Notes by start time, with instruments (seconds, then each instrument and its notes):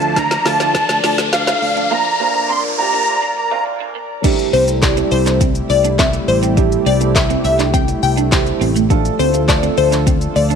Already playing: fingered electric bass D2, grand piano F3 A3 D4 F4, analog synth pad F3 A3 D4 A4 D5, accordion A5, riser
0.02 muted clean electric guitar stroke, closed hi-hat
0.16 clean electric guitar D4, accordion A#5, kick, snare, closed hi-hat
0.31 muted clean electric guitar stroke, snare, closed hi-hat
0.45 fingered electric bass D2, grand piano F3 A3 D4 F4, accordion A5, snare, open hi-hat
0.60 clean electric guitar E4, snare, closed hi-hat
0.75 kick, snare, closed hi-hat
0.89 fingered electric bass D2, snare, closed hi-hat
1.04 fingered electric bass D2, clean electric guitar F4, accordion A5, snare, open hi-hat
1.18 snare, closed hi-hat
1.33 accordion F5, snare, closed hi-hat
1.47 clean electric guitar E4, snare, closed hi-hat
1.62 fingered electric bass D2, muted clean electric guitar stroke, open hi-hat
1.76 clean electric guitar D4, closed hi-hat
1.91 grand piano D2 F3 A#3 D4 F4, analog synth pad D2 A#3 A#4 D5, clean electric guitar A#3, accordion A#5
2.20 grand piano D2 F3 A#3 D4 F4, clean electric guitar A#3
2.35 muted clean electric guitar stroke
2.49 clean electric guitar C4, accordion C6
2.64 muted clean electric guitar stroke
2.78 grand piano D2 F3 A#3 D4 G4, accordion A#5
2.93 clean electric guitar D4
3.22 clean electric guitar D4
3.37 accordion A#5, muted clean electric guitar stroke
3.51 grand piano D2 F3 A#3 D4 F4, clean electric guitar C4
3.66 muted clean electric guitar stroke
3.80 clean electric guitar D4
3.95 clean electric guitar A#3
4.24 analog synth pad C3 G3 A3 E4 G4, grand piano G3 A3 C4 E4 G4, clean electric guitar D4, kick, closed hi-hat, crash, shaker
4.39 closed hi-hat, shaker
4.53 fingered electric bass C2, clean electric guitar C4, synth pluck C5, open hi-hat, shaker
4.68 grand piano E4 A4, muted clean electric guitar stroke, closed hi-hat, shaker
4.82 grand piano G3 A3 C4 E4 G4, synth pluck D5, kick, snare, clap, closed hi-hat, shaker
4.97 clean electric guitar C4, closed hi-hat, shaker
5.11 fingered electric bass C2, synth pluck C5, muted clean electric guitar stroke, open hi-hat, shaker
5.26 clean electric guitar D4, clap, closed hi-hat, shaker
5.41 clean electric guitar C4, kick, closed hi-hat, shaker
5.55 closed hi-hat, shaker
5.70 fingered electric bass C2, synth pluck D5, muted clean electric guitar stroke, open hi-hat, shaker
5.84 clean electric guitar D4, closed hi-hat, shaker
5.99 clean electric guitar C4, synth pluck E5, kick, snare, clap, closed hi-hat, shaker
6.13 muted clean electric guitar stroke, closed hi-hat, shaker
6.28 fingered electric bass A1, synth pluck C5, open hi-hat, shaker
6.43 clean electric guitar C4, closed hi-hat, shaker
6.57 grand piano G3 A3 C4 E4 G4, clean electric guitar D4, kick, closed hi-hat, shaker
6.72 closed hi-hat, shaker
6.86 fingered electric bass C2, clean electric guitar C4, synth pluck D5, open hi-hat, shaker
7.01 grand piano G3 A3 C4 E4 G4, muted clean electric guitar stroke, closed hi-hat, shaker
7.16 synth pluck E5, kick, snare, clap, closed hi-hat, shaker
7.30 clean electric guitar C4, closed hi-hat, shaker
7.45 fingered electric bass C2, synth pluck E5, muted clean electric guitar stroke, open hi-hat, shaker
7.59 clean electric guitar D4, clap, closed hi-hat, shaker
7.74 clean electric guitar C4, synth pluck G5, kick, closed hi-hat, shaker
7.88 muted clean electric guitar stroke, closed hi-hat, shaker
8.03 fingered electric bass C2, synth pluck G5, open hi-hat, shaker
8.17 clean electric guitar D4, closed hi-hat, shaker
8.32 grand piano G3 A3 C4 E4 G4, muted clean electric guitar stroke, kick, snare, clap, closed hi-hat, shaker
8.46 closed hi-hat, shaker
8.61 fingered electric bass A1, clean electric guitar C4, open hi-hat, shaker
8.76 clean electric guitar A3, closed hi-hat, shaker
8.90 analog synth pad D3 F3 F4 A4, grand piano F3 A3 D4 F4 A4, clean electric guitar D4, kick, closed hi-hat, shaker
9.05 closed hi-hat, shaker
9.19 fingered electric bass D2, clean electric guitar C4, synth pluck C5, open hi-hat, shaker
9.34 grand piano F4 A4, muted clean electric guitar stroke, closed hi-hat, shaker
9.48 grand piano F3 A3 D4 F4 A4, synth pluck D5, kick, snare, clap, closed hi-hat, shaker
9.63 clean electric guitar C4, closed hi-hat, shaker
9.77 fingered electric bass D2, synth pluck C5, muted clean electric guitar stroke, open hi-hat, shaker
9.92 clean electric guitar D4, clap, closed hi-hat, shaker
10.07 clean electric guitar C4, kick, closed hi-hat, shaker
10.21 closed hi-hat, shaker
10.36 fingered electric bass D2, synth pluck D5, muted clean electric guitar stroke, open hi-hat, shaker
10.50 clean electric guitar D4, closed hi-hat, shaker